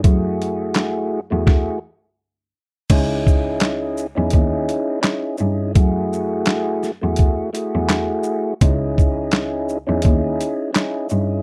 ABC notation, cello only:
X:1
M:4/4
L:1/16
Q:"Swing 16ths" 1/4=84
K:C#m
V:1 name="Cello" clef=bass
F,,6- F,, E,, z8 | C,,6- C,, E,, D,,2 z4 =G,,2 | F,,6- F,, E,, z3 E,,2 z3 | C,,6- C,, E,, D,,2 z4 =G,,2 |]